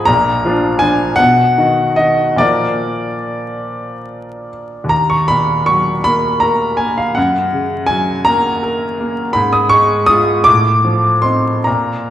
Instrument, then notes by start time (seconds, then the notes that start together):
grand piano
Already playing: F3 D#4 G#4 B5
0.05 A#1 A#2 A#5
0.45 F3 D4 F4
0.79 F3 D4 F4 G#5
1.16 B2 F#5
1.57 D#3 D#4 F#4
1.96 D#3 D#4 F#4 D#5
2.36 A#2 F3 A#3 A#4 D5
4.84 D#2
4.89 A#5
5.10 C#6
5.28 A#2 B5
5.66 F#3 C#6
6.04 A#3 B5
6.40 A#4 A#5
6.77 A#3 G#5
6.97 F5
7.15 F#2 F#5
7.53 C#3
7.86 F#3 G#5
8.25 A#3 A#5
8.63 A#4
9.00 A#3
9.33 G#2 B5
9.53 D#6
9.69 G#3 C#6
10.06 G#3 F4 D#6
10.44 A2 D6
10.84 F3
11.22 C4 D#4 C6
11.64 A#2 A#5